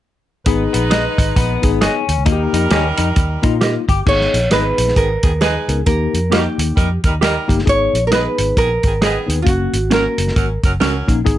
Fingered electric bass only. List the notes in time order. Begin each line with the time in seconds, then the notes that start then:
0.46 G#1
0.74 A#1
1.18 G#1
1.36 A#1
1.63 G#1
2.09 D#2
2.18 C#2
2.26 D#2
2.53 F2
2.71 D#2
2.98 F2
3.17 D#2
3.44 A#2
3.88 G1
4.07 G#1
4.34 A#1
4.52 G#1
4.78 A#1
4.96 G#1
5.24 D#2
5.68 C#2
5.87 D#2
6.14 F2
6.58 D#2
6.77 F2
7.04 D#2
7.49 G1
7.67 G#1
7.93 A#1
8.38 G#1
8.57 A#1
8.84 G#1
9.28 D#2
9.47 F#1
9.73 G#1
10.18 F#1
10.36 G#1
10.64 F#1
10.81 C#2
11.08 A#1
11.26 G#1